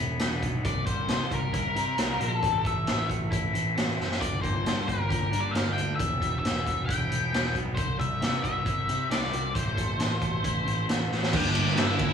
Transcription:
Already playing: clean electric guitar E3 G3 B3 E4
0.00 picked electric bass E1
0.19 picked electric bass E1, clean electric guitar G3, snare, closed hi-hat
0.42 picked electric bass B1, clean electric guitar B3, kick, closed hi-hat
0.64 picked electric bass C2, clean electric guitar C3, lead electric guitar D5, kick, closed hi-hat
0.86 picked electric bass C2, clean electric guitar G3, lead electric guitar C5, kick, closed hi-hat
1.08 picked electric bass C3, clean electric guitar E3, snare, closed hi-hat
1.31 picked electric bass C2, clean electric guitar G3, lead electric guitar A#4, kick, closed hi-hat
1.53 picked electric bass C2, clean electric guitar E4, kick, closed hi-hat
1.76 picked electric bass C3, clean electric guitar C4, closed hi-hat
1.98 picked electric bass C2, clean electric guitar G3, snare, closed hi-hat
2.19 picked electric bass A#1, clean electric guitar C4, closed hi-hat
2.23 lead electric guitar A4
2.41 picked electric bass A1, clean electric guitar A2, kick, closed hi-hat
2.64 clean electric guitar A3, lead electric guitar E5, kick, closed hi-hat
2.87 picked electric bass A1, clean electric guitar E3, snare, closed hi-hat
3.09 picked electric bass A1, clean electric guitar A3, kick, closed hi-hat
3.31 picked electric bass A1, clean electric guitar E4, kick, closed hi-hat
3.53 picked electric bass A1, clean electric guitar C4, closed hi-hat
3.75 picked electric bass A1, clean electric guitar A3, snare, closed hi-hat
3.89 snare
3.97 picked electric bass F#1, clean electric guitar C4, snare
4.11 snare
4.20 picked electric bass G1, clean electric guitar G2, lead electric guitar D5, kick, closed hi-hat
4.42 picked electric bass G1, clean electric guitar A#3, lead electric guitar C5, kick, closed hi-hat
4.64 picked electric bass G2, clean electric guitar G3, snare, closed hi-hat
4.87 picked electric bass G1, clean electric guitar A#3, lead electric guitar A#4, kick, closed hi-hat
5.09 picked electric bass G1, clean electric guitar G4, kick, closed hi-hat
5.31 picked electric bass G2, clean electric guitar D4, closed hi-hat
5.40 lead electric guitar D5
5.51 picked electric bass G1, clean electric guitar A#3, lead electric guitar F5, closed hi-hat
5.56 snare
5.73 clean electric guitar D4, lead electric guitar G5
5.77 picked electric bass D2, closed hi-hat
5.96 picked electric bass E1, clean electric guitar E2, lead electric guitar E5, kick
6.00 closed hi-hat
6.20 clean electric guitar G3, kick, closed hi-hat
6.39 clean electric guitar E3, lead electric guitar E5
6.44 picked electric bass E1, snare, closed hi-hat
6.65 picked electric bass E1, clean electric guitar G3, kick, closed hi-hat
6.86 picked electric bass E1, clean electric guitar E4, lead electric guitar G5, kick
6.90 closed hi-hat
7.10 picked electric bass E1, clean electric guitar B3, closed hi-hat
7.32 picked electric bass E1, clean electric guitar G3, snare, closed hi-hat
7.46 snare
7.54 picked electric bass B1, clean electric guitar B3, kick, closed hi-hat
7.75 picked electric bass C2, clean electric guitar C3, lead electric guitar C5, kick, closed hi-hat
7.98 picked electric bass C2, clean electric guitar G3, lead electric guitar E5, kick, closed hi-hat
8.21 picked electric bass C3, clean electric guitar E3, snare, closed hi-hat
8.43 picked electric bass C2, clean electric guitar G3, lead electric guitar E5, kick, closed hi-hat
8.66 picked electric bass C2, clean electric guitar E4, kick, closed hi-hat
8.88 picked electric bass C3, clean electric guitar C4, closed hi-hat
9.10 picked electric bass C2, clean electric guitar G3, lead electric guitar D5, snare, closed hi-hat
9.23 snare
9.32 picked electric bass C2, clean electric guitar C4, closed hi-hat
9.54 picked electric bass A1, clean electric guitar A2, lead electric guitar C5, kick, closed hi-hat
9.77 clean electric guitar A3, kick, closed hi-hat
9.99 picked electric bass A1, clean electric guitar E3, snare, closed hi-hat
10.21 picked electric bass A1, clean electric guitar A3, kick, closed hi-hat
10.44 picked electric bass A1, clean electric guitar E4, kick, closed hi-hat
10.67 picked electric bass A1, clean electric guitar C4, closed hi-hat
10.89 picked electric bass A1, clean electric guitar A3, snare, closed hi-hat
11.10 picked electric bass A1, clean electric guitar C4, snare
11.23 snare
11.33 picked electric bass G1, distorted electric guitar G2 D3 G3 A#3 D4, lead electric guitar G4, kick, crash
11.37 lead electric guitar G5
11.55 picked electric bass G1, distorted electric guitar G3 A#3 D4, ride
11.67 snare
11.76 picked electric bass G1, distorted electric guitar G2 D3 G3 A#3 D4, lead electric guitar E4 E5, snare, ride
11.99 picked electric bass G1, distorted electric guitar G3 A#3 D4, kick, ride

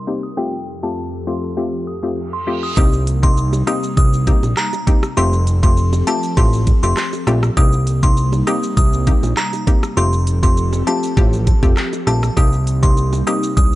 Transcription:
Already playing: analog synth pad C3 G3 D#4 A#4
0.07 synth pluck A#3 C4 D#4 G4
0.23 synth bell D#6
0.37 analog synth pad F2 F3 G4 A4, synth pluck A3 C4 F4 G4, synth bell G5
0.83 synth pluck A3 C4 F4 G4, synth bell A5
1.27 synth pluck A3 C4 F4 G4, synth bell C6
1.57 synth pluck A3 C4 F4 G4, reverse cymbal
1.87 synth bell D#6
2.03 synth pluck A3 C4 F4 G4
2.33 synth bell C6
2.47 synth pluck A3 C4 F4 G4
2.63 synth bell D#6
2.77 analog synth bass C2, analog synth pad C3 G3 A#3 D#4, synth pluck A#3 C4 D#4 G4, synth bell D#6, kick, high bongo, shaker
2.93 shaker
3.07 closed hi-hat, shaker
3.23 synth pluck A#3 C4 D#4 G4, synth bell C6, kick, shaker
3.37 shaker
3.53 high bongo, shaker
3.67 synth pluck A#3 C4 D#4 G4, synth bell D#6, cross-stick, closed hi-hat, shaker
3.83 shaker
3.97 analog synth bass C2, synth bell D#6, kick, high bongo, shaker
4.13 shaker
4.27 synth pluck A#3 C4 D#4 G4, kick, closed hi-hat, high bongo, shaker
4.43 analog synth bass A#1, high bongo, shaker
4.57 synth bell A#5, cross-stick, clap, shaker
4.73 high bongo, shaker
4.87 synth pluck A#3 C4 D#4 G4, kick, closed hi-hat, low bongo, shaker
5.03 cross-stick, shaker
5.17 analog synth bass F1, analog synth pad F3 C4 G4 A4, synth pluck A3 C4 F4 G4, synth bell C6, high bongo, shaker
5.33 shaker
5.47 closed hi-hat, shaker
5.63 synth pluck A3 C4 F4 G4, synth bell C6, kick, shaker
5.77 shaker
5.93 high bongo, shaker
6.07 synth pluck A3 C4 F4 G4, synth bell A5, closed hi-hat, shaker
6.23 shaker
6.37 analog synth bass A1, synth pluck A3 C4 F4 G4, synth bell C6, kick, high bongo, shaker
6.53 shaker
6.67 kick, closed hi-hat, high bongo, shaker
6.83 analog synth bass F1, synth pluck A3 C4 F4 G4, synth bell C6, high bongo, shaker
6.97 cross-stick, clap, shaker
7.13 high bongo, shaker
7.27 analog synth bass A#1, synth pluck A3 C4 F4 G4, cross-stick, closed hi-hat, low bongo, shaker
7.43 cross-stick, shaker
7.57 analog synth bass C2, analog synth pad C3 G3 A#3 D#4, synth pluck A#3 C4 D#4 G4, synth bell D#6, kick, high bongo, shaker
7.73 shaker
7.87 closed hi-hat, shaker
8.03 synth pluck A#3 C4 D#4 G4, synth bell C6, kick, shaker
8.17 shaker
8.33 high bongo, shaker
8.47 synth pluck A#3 C4 D#4 G4, synth bell D#6, cross-stick, closed hi-hat, shaker
8.63 shaker
8.77 analog synth bass C2, synth bell D#6, kick, high bongo, shaker
8.93 shaker
9.07 synth pluck A#3 C4 D#4 G4, kick, closed hi-hat, high bongo, shaker
9.23 analog synth bass A#1, high bongo, shaker
9.37 synth bell A#5, cross-stick, clap, shaker
9.53 high bongo, shaker
9.67 synth pluck A#3 C4 D#4 G4, kick, closed hi-hat, low bongo, shaker
9.83 cross-stick, shaker
9.97 analog synth bass F1, analog synth pad F3 C4 G4 A4, synth pluck A3 C4 F4 G4, synth bell C6, high bongo, shaker
10.13 shaker
10.27 closed hi-hat, shaker
10.43 synth pluck A3 C4 F4 G4, synth bell C6, kick, shaker
10.57 shaker
10.73 high bongo, shaker
10.87 synth pluck A3 C4 F4 G4, synth bell A5, closed hi-hat, low bongo, shaker
11.03 shaker
11.17 analog synth bass A1, synth pluck A3 C4 F4 G4, kick, high bongo, shaker
11.33 shaker
11.47 kick, closed hi-hat, high bongo, shaker
11.63 analog synth bass F1, synth pluck A3 C4 F4 G4, kick, high bongo, shaker
11.77 cross-stick, clap, shaker
11.93 high bongo, shaker
12.07 analog synth bass A#1, synth pluck A3 C4 F4 G4, synth bell A5, cross-stick, closed hi-hat, low bongo, shaker
12.23 cross-stick, shaker
12.37 analog synth bass C2, analog synth pad C3 G3 A#3 D#4, synth pluck A#3 C4 D#4 G4, synth bell D#6, kick, high bongo, shaker
12.53 shaker
12.67 closed hi-hat, shaker
12.83 synth pluck A#3 C4 D#4 G4, synth bell C6, kick, shaker
12.97 shaker
13.13 high bongo, shaker
13.27 synth pluck A#3 C4 D#4 G4, synth bell D#6, cross-stick, closed hi-hat, shaker
13.43 shaker
13.57 analog synth bass C2, synth bell D#6, kick, high bongo, shaker

